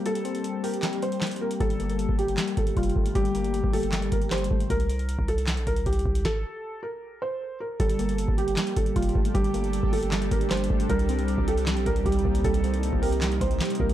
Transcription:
Already playing: G3 A#3 C4 G4
0.06 G3 A4, closed hi-hat
0.15 closed hi-hat
0.25 C4, closed hi-hat
0.35 closed hi-hat
0.44 closed hi-hat
0.63 G4 A#4, open hi-hat
0.74 closed hi-hat
0.83 G3, snare, clap, closed hi-hat
0.93 closed hi-hat
1.02 C5, closed hi-hat
1.12 closed hi-hat
1.21 G3, snare, clap, closed hi-hat
1.27 closed hi-hat
1.31 closed hi-hat
1.36 closed hi-hat
1.41 A#3 A#4
1.51 closed hi-hat
1.60 G1 G3 A4, kick, closed hi-hat
1.70 closed hi-hat
1.80 A#3, closed hi-hat
1.90 closed hi-hat
1.99 closed hi-hat
2.09 G1, kick
2.18 G4, closed hi-hat
2.28 closed hi-hat
2.37 G3, snare, clap, closed hi-hat
2.48 closed hi-hat
2.57 G1 A4, kick, closed hi-hat
2.67 closed hi-hat
2.77 F1 G3 F4, kick, closed hi-hat
2.83 closed hi-hat
2.89 closed hi-hat
2.96 G1 A3, kick
3.06 closed hi-hat
3.15 G1 G3 G4, kick, closed hi-hat
3.25 closed hi-hat
3.35 A#3, closed hi-hat
3.44 closed hi-hat
3.54 closed hi-hat
3.64 G1, kick
3.73 G4 A4, open hi-hat
3.83 closed hi-hat
3.92 G3, snare, clap, closed hi-hat
4.02 closed hi-hat
4.12 G1 A#4, kick, closed hi-hat
4.22 closed hi-hat
4.31 G3 C5, snare, clap, closed hi-hat
4.38 closed hi-hat
4.44 closed hi-hat
4.51 G1 A3, kick
4.60 closed hi-hat
4.70 C2 A#4, kick, closed hi-hat
4.80 closed hi-hat
4.90 closed hi-hat
4.99 closed hi-hat
5.09 closed hi-hat
5.19 C2, kick
5.28 A4, closed hi-hat
5.38 closed hi-hat
5.47 snare, clap, closed hi-hat
5.57 A#1, closed hi-hat
5.67 C2 A#4, kick, closed hi-hat
5.76 closed hi-hat
5.86 C2 G4, kick, closed hi-hat
5.93 closed hi-hat
5.99 closed hi-hat
6.06 C2, kick
6.15 closed hi-hat
6.25 A4, kick, snare
6.83 A#4
7.22 C5
7.60 A#4
7.80 G1 G3 D4 G4 A4, kick, closed hi-hat
7.89 closed hi-hat
7.99 A#3, closed hi-hat
8.09 closed hi-hat
8.18 closed hi-hat
8.28 G1, kick
8.38 G4, closed hi-hat
8.48 closed hi-hat
8.57 G3, snare, clap, closed hi-hat
8.67 closed hi-hat
8.76 G1 A4, kick, closed hi-hat
8.86 closed hi-hat
8.96 F1 G3 F4, kick, closed hi-hat
9.02 closed hi-hat
9.09 closed hi-hat
9.15 G1 A3, kick
9.25 closed hi-hat
9.35 G1 G3 G4, kick, closed hi-hat
9.44 closed hi-hat
9.54 A#3, closed hi-hat
9.64 closed hi-hat
9.73 closed hi-hat
9.83 G1, kick
9.93 G4 A4, open hi-hat
10.03 closed hi-hat
10.12 G3, snare, clap, closed hi-hat
10.22 closed hi-hat
10.31 G1 A#4, kick, closed hi-hat
10.41 closed hi-hat
10.50 G3 C5, snare, clap, closed hi-hat
10.57 closed hi-hat
10.64 closed hi-hat
10.70 G1 A3, kick
10.80 closed hi-hat
10.89 C2 C3 G3 A#3 D#4 A#4, kick, closed hi-hat
10.99 closed hi-hat
11.09 C4, closed hi-hat
11.19 closed hi-hat
11.28 closed hi-hat
11.38 C2, kick
11.48 G4 A4, closed hi-hat
11.57 closed hi-hat
11.66 G3, snare, clap, closed hi-hat
11.77 A#1, closed hi-hat
11.86 C2 A#4, kick, closed hi-hat
11.96 closed hi-hat
12.05 C2 G3 G4, kick, closed hi-hat
12.12 closed hi-hat
12.19 closed hi-hat
12.25 C2 A#3, kick
12.35 closed hi-hat
12.44 C2 G3 A4, kick, closed hi-hat
12.54 closed hi-hat
12.64 C4, closed hi-hat
12.74 closed hi-hat
12.83 closed hi-hat
12.93 C2, kick
13.02 G4 A#4, open hi-hat
13.12 closed hi-hat
13.21 G3, snare, clap, closed hi-hat
13.32 closed hi-hat
13.41 C2 C5, kick, closed hi-hat
13.51 closed hi-hat
13.60 G3, snare, clap, closed hi-hat
13.65 closed hi-hat
13.70 closed hi-hat
13.75 closed hi-hat
13.80 C2 A#3 A#4, kick
13.89 closed hi-hat

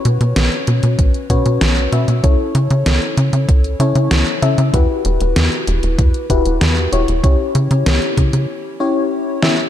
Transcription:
Already playing: C#4 F#4 B4 C#5
0.05 B2, closed hi-hat
0.21 B2, closed hi-hat
0.36 B1, snare, closed hi-hat
0.52 closed hi-hat
0.67 B2, closed hi-hat
0.83 B2, closed hi-hat
0.99 B1, kick, closed hi-hat
1.14 closed hi-hat
1.30 B2 C#4 F#4 B4 C#5, kick, closed hi-hat
1.46 B2, closed hi-hat
1.61 B1, snare, closed hi-hat
1.77 closed hi-hat
1.92 B2 C#4 F#4 B4 E5, closed hi-hat
2.08 B2, closed hi-hat
2.23 C#2 C#4 E4 A4 C#5, kick, closed hi-hat
2.55 C#3, closed hi-hat
2.70 C#3, closed hi-hat
2.86 C#2, snare, closed hi-hat
3.02 closed hi-hat
3.17 C#3, closed hi-hat
3.33 C#3, closed hi-hat
3.49 C#2, kick, closed hi-hat
3.64 closed hi-hat
3.80 C#3 C#4 E4 A4 C#5, closed hi-hat
3.95 C#3, closed hi-hat
4.11 C#2, snare, closed hi-hat
4.27 closed hi-hat
4.42 C#3 C#4 E4 A4 E5, closed hi-hat
4.58 C#3, closed hi-hat
4.74 E2 E4 F#4 G4 B4, kick, closed hi-hat
5.05 E1, closed hi-hat
5.21 E1, closed hi-hat
5.36 E2, snare, closed hi-hat
5.52 closed hi-hat
5.67 E1, closed hi-hat
5.83 E1, closed hi-hat
5.99 E2, kick, closed hi-hat
6.14 closed hi-hat
6.30 E1 E4 F#4 G4 B4, kick, closed hi-hat
6.46 E1, closed hi-hat
6.61 E2, snare, closed hi-hat
6.77 closed hi-hat
6.92 E1 E4 F#4 G4 C#5, closed hi-hat
7.08 E1, closed hi-hat
7.24 C#2 C#4 E4 G4 C#5, kick, closed hi-hat
7.55 C#3, closed hi-hat
7.71 C#3, closed hi-hat
7.86 C#2, snare, closed hi-hat
8.02 closed hi-hat
8.17 C#3, kick, closed hi-hat
8.33 C#3, closed hi-hat
8.80 C#4 E4 G4 C#5
9.42 C#4 E4 G4 E5, snare

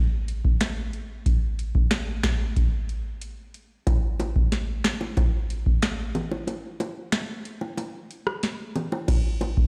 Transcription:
0.28 closed hi-hat
0.45 kick
0.61 finger snap, snare, closed hi-hat
0.93 closed hi-hat
1.26 kick, closed hi-hat
1.59 closed hi-hat
1.75 kick
1.91 finger snap, snare, closed hi-hat
2.23 finger snap, kick, snare, closed hi-hat
2.56 kick, closed hi-hat
2.89 closed hi-hat
3.21 closed hi-hat
3.54 closed hi-hat
3.87 kick, closed hi-hat, high bongo
4.20 closed hi-hat, high bongo
4.36 kick
4.52 snare, closed hi-hat
4.84 finger snap, snare, closed hi-hat
5.01 high bongo
5.17 kick, closed hi-hat, high bongo
5.50 closed hi-hat
5.66 kick
5.82 finger snap, snare, closed hi-hat
6.15 closed hi-hat, low bongo
6.31 high bongo
6.47 closed hi-hat, high bongo
6.80 closed hi-hat, high bongo
7.12 finger snap, snare, closed hi-hat
7.45 closed hi-hat
7.61 high bongo
7.77 closed hi-hat, high bongo
8.11 closed hi-hat
8.27 cross-stick
8.43 snare, closed hi-hat
8.76 closed hi-hat, low bongo
8.92 high bongo
9.08 kick, closed hi-hat, crash, high bongo
9.41 closed hi-hat, high bongo
9.57 kick

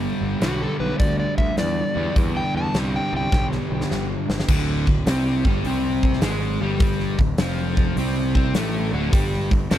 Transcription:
Already playing: G2 D3 G3
0.21 G1
0.40 B1 G2 D3 G3 F#4, snare, open hi-hat
0.62 A4
0.80 B1 B4
0.99 D2 D5, kick, open hi-hat
1.19 D5
1.38 D2 E5, kick
1.57 E2 D5, snare, open hi-hat
1.95 E2 G2 D3
2.00 G3
2.16 E2, kick, open hi-hat
2.37 G5
2.55 E2 A5
2.74 C2 G2 D3 G3, snare, open hi-hat
2.96 G5
3.13 C2 G5
3.32 B1, kick, snare
3.52 snare
3.70 B1
3.81 snare
3.91 G1, snare
4.30 G1, snare
4.40 snare
4.48 D1 D2 D3, kick, crash
4.87 D1 D2, kick
5.06 C2 C3 C4, snare, open hi-hat
5.45 G1 G2 G3, kick
5.64 C2 C3 C4, open hi-hat
6.03 kick
6.13 snare
6.22 G#1 G#2 G#3, snare, open hi-hat
6.61 G1 G2 G3
6.80 kick, open hi-hat
7.00 snare
7.19 D1 D2, kick
7.38 F1 F2 F3, snare, open hi-hat
7.77 kick
7.97 C2 C3 C4, open hi-hat
8.35 C2 C3 C4, kick
8.54 A1 A2 A3, snare, open hi-hat
8.93 D1 D2 D3
9.13 G1 G2 G3, kick, open hi-hat
9.33 snare
9.51 G1 G2, kick
9.70 F1 F2 F3, snare, open hi-hat

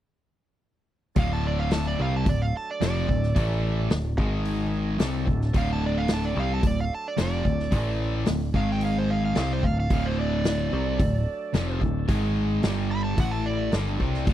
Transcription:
1.15 D1 D2 A2 D3 F#3 A3 D4 A4 F5, kick, open hi-hat
1.33 A5
1.47 D5
1.59 F5
1.71 A5, snare, open hi-hat
1.87 D5
1.99 C2 C3 G3 C4 F5
2.16 A5
2.26 D1 D2 A2 D5, kick, open hi-hat
2.42 F5
2.57 A5
2.71 D5
2.81 F1 F2 C3 F3, snare, open hi-hat
2.85 D5
3.08 D1 D2 A2, kick
3.23 snare
3.35 A1 A2 E3 A3 E4 A4, kick, open hi-hat
3.90 D1 D2 A2, snare, open hi-hat
4.18 G#1 G#2 D#3 G#3 D#4 G#4, kick
4.45 open hi-hat
4.99 C2 C3 F#3 G3 A3 C4 D4 A4, snare, open hi-hat
5.26 D1 D2 A2, kick
5.42 snare
5.53 D1 D2 A2 D3, kick, open hi-hat
5.58 F5
5.73 A5
5.86 D5
5.98 F5
6.08 snare, open hi-hat
6.14 A5
6.25 D5
6.35 C2 C3 G3 C4
6.40 F5
6.54 A5
6.63 D1 D2 A2 D5, kick, open hi-hat
6.80 F5
6.95 A5
7.08 D5
7.17 F1 F2 C3 F3, snare, open hi-hat
7.21 D5
7.45 D1 D2 A2, kick
7.59 snare
7.71 A1 A2 E3 A3 E4 A4, kick, open hi-hat
8.26 D1 D2 A2, snare, open hi-hat
8.53 G#1 G#2 D#3 G#3 D#4 G#4 F5, kick
8.72 G5
8.81 open hi-hat
8.85 F5
8.99 C5
9.10 F5
9.25 F5
9.35 C2 C3 F#3 G3 A3 C4 D4 A4 F5, snare, open hi-hat
9.53 C5
9.63 D1 D2 A2 F5, kick
9.80 F5
9.90 D1 D2 A2 D3 F5, kick, open hi-hat
10.06 C5
10.21 D5
10.45 snare, open hi-hat
10.72 C2 C3 G3 C4
11.00 D1 D2 A2, kick, open hi-hat
11.54 F1 F2 C3 F3, snare, open hi-hat
11.81 D1 D2 A2, kick
12.08 G#1 G#2 D#3 G#3 D#4 G#4, kick, open hi-hat
12.63 G1 G2 D3 G3 D4 G4, snare, open hi-hat
12.91 B5
13.04 A5
13.16 A1 A2 E3 A3 E4 A4 F#5, kick, open hi-hat
13.31 A5
13.46 D5
13.71 G1 G2 D3 G3 A#3 D#4 A#4, snare, open hi-hat
13.89 F#3 A3 D4 A4
13.99 C2 C3 G3 C4, kick
14.14 snare
14.26 D1 D2 A2 D3, kick, open hi-hat

